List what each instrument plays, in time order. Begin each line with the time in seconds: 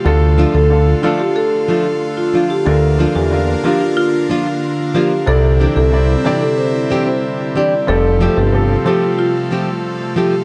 Already playing: analog synth pad A3 F4
0.05 analog synth bass D2, grand piano D3 D4 F4 A4, analog synth pad D3, marimba A4
0.38 nylon-string guitar F3 A3 D4 F4
0.54 analog synth bass D2, marimba A4
0.70 grand piano D3 D4 F4 A4
1.02 grand piano D3 D4 F4 A4, nylon-string guitar F3 A3 D4 F4, marimba F4
1.20 marimba G4
1.36 marimba A4
1.68 nylon-string guitar F3 A3 D4 F4
2.17 marimba F4
2.34 nylon-string guitar F3 A3 D4 F4
2.50 marimba G4
2.65 analog synth bass D2, grand piano D3 D4 F4 A#4, analog synth pad A#3, marimba A4
2.99 nylon-string guitar F3 A#3 D4 F4
3.15 analog synth bass E2, marimba G4
3.31 grand piano D3 D4 F4 A#4
3.63 grand piano D3 D4 F4 A#4, nylon-string guitar F3 A#3 D4 F4, marimba G4
3.81 marimba F4
3.97 marimba F4
4.29 nylon-string guitar F3 A#3 D4 F4
4.94 nylon-string guitar F3 A#3 D4 F4, marimba G4
5.26 analog synth bass C2, grand piano C3 C4 E4 D5, analog synth pad G3 C4 E4, marimba A4
5.60 nylon-string guitar E3 C4 D4 G4
5.76 analog synth bass C2, marimba A4
5.92 grand piano C3 C4 E4 D5
6.24 grand piano C3 C4 E4 D5, nylon-string guitar E3 C4 D4 G4, marimba G4
6.41 marimba A4
6.58 marimba C5
6.90 nylon-string guitar E3 C4 D4 G4
7.07 marimba C5
7.55 nylon-string guitar E3 C4 D4 G4, marimba D5
7.87 analog synth bass F1, analog synth pad C3 A3 F4, grand piano F3 C4 G4 A4, marimba A4
8.20 nylon-string guitar F3 A3 C4 G4
8.37 analog synth bass G1, marimba G4
8.52 grand piano F3 C4 G4 A4
8.85 grand piano F3 C4 G4 A4, nylon-string guitar F3 A3 C4 G4, marimba G4
9.02 marimba F4
9.19 marimba F4
9.51 nylon-string guitar F3 A3 C4 G4
10.16 nylon-string guitar F3 A3 C4 G4, marimba G4